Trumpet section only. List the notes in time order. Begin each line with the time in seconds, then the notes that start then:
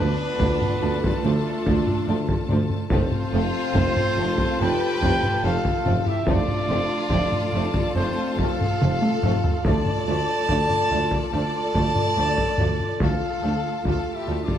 Already playing: B4
1.25 A4
2.92 C5
4.61 G5
5.45 F5
6.07 E5
6.28 D5
7.95 C5
8.38 F5
9.65 A5
11.33 A5
13.02 F5
13.86 F5
14.14 E5
14.43 D5